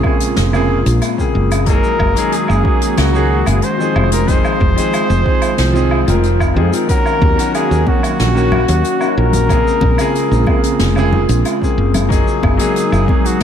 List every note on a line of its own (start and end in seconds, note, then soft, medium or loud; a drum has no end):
0.00 1.65 A#2 medium
0.00 0.49 C#3 medium
0.00 6.85 G#3 medium
0.00 3.92 A#3 medium
0.00 1.65 F4 medium
0.00 low woodblock medium
0.04 0.50 A#3 medium
0.04 0.50 C4 medium
0.04 0.51 G#4 medium
0.04 kick loud
0.20 closed hi-hat medium
0.20 shaker medium
0.36 0.81 F1 medium
0.36 snare medium
0.36 closed hi-hat soft
0.36 shaker medium
0.52 0.76 C#3 medium
0.52 0.76 A#3 medium
0.52 0.77 C4 medium
0.52 0.78 G#4 loud
0.52 low woodblock medium
0.52 shaker soft
0.86 0.99 A#1 medium
0.86 closed hi-hat medium
0.86 shaker medium
1.01 closed hi-hat medium
1.01 low woodblock medium
1.01 shaker medium
1.17 1.63 C#3 medium
1.17 1.63 A#3 medium
1.17 1.64 C4 medium
1.17 1.64 G#4 medium
1.17 kick medium
1.17 shaker medium
1.35 1.79 F#1 medium
1.51 closed hi-hat medium
1.51 low woodblock medium
1.51 shaker medium
1.66 6.85 D#3 medium
1.66 2.12 F#3 medium
1.66 2.12 A#3 medium
1.66 3.94 C#4 medium
1.66 2.13 D#4 medium
1.66 3.93 F#4 medium
1.66 2.14 G#4 medium
1.66 2.34 A#4 loud
1.66 kick loud
1.66 closed hi-hat medium
1.66 shaker medium
1.84 shaker soft
1.99 2.13 F#1 medium
1.99 kick medium
1.99 low woodblock medium
2.15 2.60 F#3 medium
2.15 2.61 A#3 medium
2.15 2.62 D#4 medium
2.15 2.62 G#4 loud
2.15 closed hi-hat medium
2.15 shaker medium
2.32 3.00 G#4 medium
2.32 closed hi-hat medium
2.32 shaker medium
2.48 2.62 F#1 medium
2.48 low woodblock medium
2.48 shaker medium
2.64 3.10 F#3 medium
2.64 3.10 A#3 medium
2.64 3.11 D#4 medium
2.64 3.12 G#4 medium
2.64 kick loud
2.81 closed hi-hat medium
2.81 shaker medium
2.97 3.42 C#2 medium
2.97 3.49 F#4 loud
2.97 snare medium
2.97 closed hi-hat medium
2.97 low woodblock medium
2.97 shaker medium
3.13 3.36 F#3 medium
3.13 3.37 A#3 medium
3.13 3.38 D#4 medium
3.13 3.38 G#4 loud
3.13 shaker soft
3.46 3.60 F#1 medium
3.46 3.65 G#4 medium
3.46 closed hi-hat medium
3.46 low woodblock medium
3.46 shaker medium
3.62 4.12 C5 loud
3.62 closed hi-hat medium
3.62 shaker medium
3.78 4.24 F3 medium
3.78 4.24 C4 medium
3.78 4.25 D#4 medium
3.78 4.25 G#4 medium
3.78 shaker medium
3.95 4.40 F1 medium
3.95 6.86 F3 medium
3.95 6.86 C4 medium
3.95 6.86 F4 medium
3.95 low woodblock medium
4.12 4.30 A#4 loud
4.12 closed hi-hat medium
4.12 shaker medium
4.27 4.73 F3 medium
4.27 4.73 C4 medium
4.27 4.74 D#4 medium
4.27 4.74 G#4 medium
4.27 6.24 C5 loud
4.27 kick loud
4.27 closed hi-hat medium
4.27 shaker medium
4.45 low woodblock medium
4.45 shaker soft
4.61 4.74 F1 medium
4.61 kick medium
4.75 5.21 F3 medium
4.75 5.22 C4 medium
4.75 5.22 D#4 medium
4.75 5.23 G#4 medium
4.75 closed hi-hat medium
4.75 shaker medium
4.93 closed hi-hat medium
4.93 low woodblock medium
4.93 shaker medium
5.10 5.23 F1 medium
5.10 shaker soft
5.24 5.70 F3 medium
5.24 5.71 C4 medium
5.24 5.71 D#4 medium
5.24 5.72 G#4 medium
5.24 kick loud
5.41 closed hi-hat medium
5.41 low woodblock medium
5.41 shaker medium
5.58 6.03 C2 medium
5.58 snare medium
5.58 closed hi-hat medium
5.58 shaker medium
5.73 5.97 F3 medium
5.73 5.98 C4 medium
5.73 5.98 D#4 medium
5.73 5.99 G#4 medium
5.73 shaker soft
5.91 low woodblock medium
6.06 6.58 F1 medium
6.06 6.52 F3 medium
6.06 6.52 C4 medium
6.06 6.53 D#4 medium
6.06 6.54 A#4 medium
6.06 closed hi-hat medium
6.06 shaker medium
6.23 closed hi-hat medium
6.23 shaker medium
6.40 kick medium
6.40 low woodblock medium
6.40 shaker soft
6.54 6.70 F2 medium
6.54 6.68 F3 medium
6.54 6.69 C4 medium
6.54 6.69 D#4 medium
6.54 6.70 G#4 medium
6.71 6.84 F3 medium
6.71 6.85 C4 medium
6.71 6.85 D#4 medium
6.71 6.86 A#4 medium
6.71 closed hi-hat medium
6.71 shaker medium
6.87 7.33 D#3 medium
6.87 9.48 D#3 medium
6.87 9.48 F#3 medium
6.87 7.34 A#3 medium
6.87 13.43 A#3 medium
6.87 7.34 C#4 medium
6.87 9.48 C#4 medium
6.87 9.48 F#4 medium
6.87 7.35 F#4 medium
6.87 7.51 A#4 loud
6.87 kick loud
6.87 closed hi-hat medium
6.87 shaker medium
7.06 low woodblock medium
7.06 shaker soft
7.21 7.35 D#2 medium
7.21 kick loud
7.21 high conga medium
7.36 7.82 D#3 medium
7.36 7.83 A#3 medium
7.36 7.83 C#4 medium
7.36 7.84 F#4 medium
7.36 closed hi-hat medium
7.36 shaker medium
7.54 7.89 G#4 loud
7.54 closed hi-hat medium
7.54 low woodblock medium
7.54 shaker medium
7.71 7.84 D#2 medium
7.71 shaker soft
7.85 8.31 D#3 medium
7.85 8.32 A#3 medium
7.85 8.32 C#4 medium
7.85 9.18 F#4 medium
7.85 8.33 F#4 medium
7.85 kick medium
7.85 high conga medium
8.03 closed hi-hat medium
8.03 low woodblock medium
8.03 shaker medium
8.20 8.64 A#1 medium
8.20 snare medium
8.20 closed hi-hat soft
8.20 shaker medium
8.34 8.58 D#3 medium
8.34 8.59 A#3 medium
8.34 8.59 C#4 medium
8.34 8.60 F#4 loud
8.34 shaker medium
8.52 low conga medium
8.52 low woodblock medium
8.68 8.82 D#2 medium
8.68 closed hi-hat medium
8.68 shaker medium
8.84 closed hi-hat medium
8.84 shaker medium
8.99 9.45 D#3 medium
8.99 9.46 A#3 medium
8.99 9.46 C#4 medium
8.99 9.47 F#4 medium
8.99 low woodblock medium
8.99 shaker soft
9.17 9.62 A#1 medium
9.17 10.44 A#4 loud
9.33 closed hi-hat medium
9.33 high conga medium
9.33 low conga medium
9.33 shaker medium
9.48 9.94 C#3 medium
9.48 13.43 C#3 medium
9.48 12.08 G#3 medium
9.48 9.95 A#3 medium
9.48 12.08 C4 medium
9.48 9.95 C4 medium
9.48 12.08 F4 medium
9.48 9.96 G#4 medium
9.48 kick loud
9.48 closed hi-hat medium
9.48 low woodblock medium
9.48 shaker medium
9.68 shaker soft
9.81 9.96 A#1 medium
9.81 kick medium
9.81 high conga medium
9.97 10.43 C#3 medium
9.97 10.44 A#3 medium
9.97 10.44 C4 medium
9.97 10.45 G#4 loud
9.97 closed hi-hat medium
9.97 low woodblock medium
9.97 shaker medium
10.15 closed hi-hat medium
10.15 shaker medium
10.31 10.45 A#1 medium
10.31 shaker soft
10.46 10.92 C#3 medium
10.46 10.93 A#3 medium
10.46 10.93 C4 medium
10.46 10.94 G#4 medium
10.46 kick loud
10.46 high conga medium
10.46 low woodblock medium
10.63 closed hi-hat medium
10.63 shaker medium
10.79 11.25 F1 medium
10.79 snare medium
10.79 closed hi-hat soft
10.79 shaker medium
10.95 11.19 C#3 loud
10.95 11.20 A#3 medium
10.95 11.20 C4 medium
10.95 11.21 G#4 loud
10.95 low woodblock medium
10.95 shaker soft
11.13 low conga medium
11.28 11.43 A#1 medium
11.28 closed hi-hat medium
11.28 shaker medium
11.45 closed hi-hat medium
11.45 low woodblock medium
11.45 shaker medium
11.60 12.06 C#3 medium
11.60 12.07 A#3 medium
11.60 12.07 C4 medium
11.60 12.08 G#4 medium
11.60 kick medium
11.60 shaker soft
11.78 12.22 F#1 medium
11.94 closed hi-hat medium
11.94 high conga medium
11.94 low conga medium
11.94 low woodblock medium
11.94 shaker medium
12.09 12.55 F#3 medium
12.09 13.43 F#3 medium
12.09 13.43 G#3 medium
12.09 12.55 A#3 medium
12.09 13.43 D#4 medium
12.09 12.56 D#4 medium
12.09 12.57 G#4 medium
12.09 kick loud
12.09 closed hi-hat medium
12.09 shaker medium
12.28 shaker soft
12.43 12.57 F#1 medium
12.43 13.27 G#4 medium
12.43 kick loud
12.43 high conga medium
12.43 low woodblock medium
12.57 13.03 F#3 medium
12.57 13.04 A#3 medium
12.57 13.05 D#4 medium
12.57 13.05 G#4 loud
12.57 closed hi-hat medium
12.57 shaker medium
12.76 closed hi-hat medium
12.76 shaker medium
12.92 13.06 F#1 medium
12.92 low woodblock medium
12.92 shaker soft
13.07 13.43 F#3 medium
13.07 13.43 A#3 medium
13.07 13.43 D#4 medium
13.07 13.43 G#4 medium
13.07 kick loud
13.07 high conga medium
13.25 13.43 F#4 medium
13.25 closed hi-hat medium
13.25 shaker medium
13.40 closed hi-hat soft